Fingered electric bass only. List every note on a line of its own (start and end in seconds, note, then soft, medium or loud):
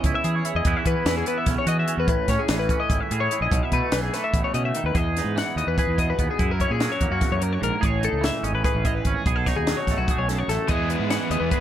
0.03 0.12 C#2 medium
0.24 0.41 E3 medium
0.55 0.63 E2 medium
0.65 0.73 E2 loud
0.86 0.94 E3 medium
1.05 1.22 E2 medium
1.47 1.55 B1 medium
1.66 1.83 E3 medium
1.97 2.06 E2 medium
2.08 2.16 A1 loud
2.28 2.37 A2 medium
2.49 2.66 A1 medium
2.89 2.98 G#1 medium
3.11 3.27 A2 medium
3.41 3.49 A#1 medium
3.52 3.60 B1 medium
3.71 3.80 B2 medium
3.92 4.09 B1 medium
4.33 4.42 A1 medium
4.54 4.70 B2 medium
4.84 4.92 D#2 medium
4.95 5.20 E2 medium
5.24 5.42 G#2 medium
5.56 5.65 D#2 medium
5.67 5.75 E2 medium
5.87 6.12 E2 medium
6.19 6.27 D#2 medium
6.39 6.64 F#2 medium
6.70 6.87 A#2 medium
7.01 7.09 E2 medium
7.10 7.19 F#2 medium
7.31 7.56 F#2 medium
7.62 7.70 A#1 medium
7.83 8.08 A1 medium
8.12 8.29 C#2 medium
8.43 8.52 G#1 medium
8.53 8.62 A1 medium
8.75 8.99 A1 medium
9.05 9.13 G#1 medium
9.26 9.51 B1 medium
9.56 9.73 D#2 medium
9.87 9.95 A1 medium
9.97 10.06 B1 medium
10.17 10.42 B1 medium
10.48 10.57 A1 medium
10.69 10.94 E2 medium
10.99 11.16 G#2 medium
11.30 11.39 D#2 medium
11.40 11.49 E2 medium